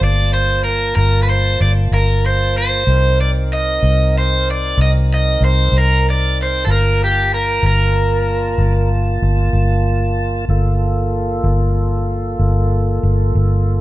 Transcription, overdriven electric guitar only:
0.04 0.33 D5 medium
0.34 0.64 C5 medium
0.64 0.94 A#4 medium
0.96 1.19 A#4 medium
1.23 1.29 B4 medium
1.30 1.62 C5 medium
1.62 1.70 D5 medium
1.94 2.26 A#4 medium
2.26 2.55 C5 medium
2.58 3.21 C5 medium
3.21 3.29 D5 medium
3.53 4.18 D#5 loud
4.18 4.49 C5 medium
4.51 4.81 D5 medium
4.82 4.90 D#5 medium
5.14 5.44 D#5 medium
5.45 5.76 C5 medium
5.78 6.05 A#4 medium
6.10 6.37 D5 medium
6.43 6.63 C5 medium
6.65 6.70 A4 medium
6.71 7.03 A#4 medium
7.04 7.34 G4 medium
7.34 7.65 A#4 medium
7.66 8.88 A#4 medium

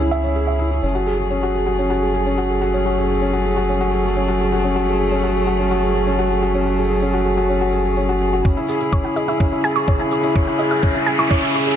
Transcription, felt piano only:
0.00 0.83 C#4 medium
0.00 0.59 E4 medium
0.00 0.35 G#4 medium
0.11 0.23 E5 medium
0.23 0.30 C#5 medium
0.35 0.42 G#4 medium
0.47 0.59 E5 medium
0.59 0.70 E4 medium
0.71 0.83 E4 medium
0.83 0.94 C#4 medium
0.95 1.06 F#4 medium
1.07 1.17 G#4 medium
1.19 1.30 G#4 medium
1.30 1.37 C#4 medium
1.43 1.54 F#4 medium
1.54 1.66 G#4 medium
1.67 1.78 F#4 medium
1.78 1.90 C#4 medium
1.90 2.02 F#4 medium
2.02 2.13 G#4 medium
2.14 2.26 G#4 medium
2.26 2.33 C#4 medium
2.38 2.49 F#4 medium
2.50 2.61 G#4 medium
2.62 2.73 F#4 medium
2.74 2.85 C#4 medium
2.86 2.97 F#4 medium
2.98 3.08 G#4 medium
3.10 3.21 G#4 medium
3.22 3.28 C#4 medium
3.33 3.45 F#4 medium
3.45 3.56 G#4 medium
3.56 3.68 F#4 medium
3.69 3.80 C#4 medium
3.81 3.92 F#4 medium
3.93 4.03 G#4 medium
4.05 4.16 G#4 medium
4.16 4.23 C#4 medium
4.28 4.40 F#4 medium
4.40 4.52 G#4 medium
4.52 4.64 F#4 medium
4.64 4.76 C#4 medium
4.76 4.87 F#4 medium
4.88 4.98 G#4 medium
5.00 5.11 G#4 medium
5.12 5.19 C#4 medium
5.24 5.35 F#4 medium
5.36 5.47 G#4 medium
5.47 5.59 F#4 medium
5.59 5.71 C#4 medium
5.71 5.83 F#4 medium
5.83 5.93 G#4 medium
5.95 6.06 G#4 medium
6.07 6.14 C#4 medium
6.19 6.30 F#4 medium
6.31 6.42 G#4 medium
6.42 6.54 F#4 medium
6.55 6.66 C#4 medium
6.66 6.78 F#4 medium
6.78 6.88 G#4 medium
6.90 7.02 G#4 medium
7.02 7.09 C#4 medium
7.14 7.25 F#4 medium
7.25 7.37 G#4 medium
7.37 7.49 F#4 medium
7.50 7.61 C#4 medium
7.61 7.73 F#4 medium
7.73 7.83 G#4 medium
7.85 7.97 G#4 medium
7.97 8.04 C#4 medium
8.09 8.21 F#4 medium
8.21 8.33 G#4 medium
8.33 8.44 F#4 medium
8.45 8.56 C#4 medium
8.57 8.68 E4 medium
8.69 8.79 G#4 medium
8.81 8.92 G#4 medium
8.92 8.99 C#4 medium
9.04 9.16 E4 medium
9.16 9.28 G#4 medium
9.28 9.40 E4 medium
9.40 9.52 C#4 medium
9.52 9.64 E4 medium
9.64 9.74 G#4 medium
9.76 9.87 G#4 medium
9.87 9.95 C#4 medium
9.99 10.11 E4 medium
10.11 10.23 G#4 medium
10.23 10.35 E4 medium
10.35 10.47 C#4 medium
10.47 10.59 E4 medium
10.59 10.69 G#4 medium
10.71 10.82 G#4 medium
10.83 10.90 C#4 medium
10.95 11.06 E4 medium
11.06 11.18 G#4 medium
11.18 11.30 E4 medium
11.30 11.42 C#4 medium
11.42 11.54 E4 medium
11.55 11.65 G#4 medium
11.66 11.76 G#4 medium

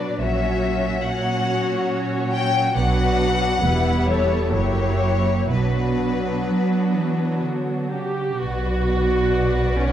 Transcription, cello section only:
0.00 0.14 B2 soft
0.19 2.73 A#2 soft
2.77 3.58 B2 medium
3.62 4.52 E2 medium
4.52 5.49 F#2 medium
5.48 6.35 B2 soft
6.46 6.91 F#3 soft
6.94 7.43 E3 soft
7.42 7.92 D3 soft
7.92 8.40 C#3 soft
8.40 9.92 B2 medium

